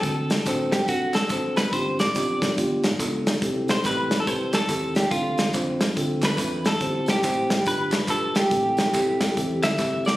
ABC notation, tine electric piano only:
X:1
M:4/4
L:1/8
Q:"Swing" 1/4=142
K:C
V:1 name="Tine electric piano"
[CD^FA] z [CDFc] z [CDFA] z [CDFc] z | [CDFG] z [CDFG] z [B,DFG] z [B,DFA] z | [CEGA] z [CEGA] z [CEGB] z [CEGA] z | [CDFA] z [CDFc] z [CDFA] z [CDFA] z |
[CEGc] z [CEGc] z [DFGB] z [DFGB] z | [CEGA] z [CEGA] z [CEGA] z [CEGA] z |]
V:2 name="Tine electric piano" clef=bass
D,3 z4 z | G,,3 z G,,3 z | C,3 z4 z | D,3 z4 z |
G,,3 z G,,3 z | A,,3 z4 z |]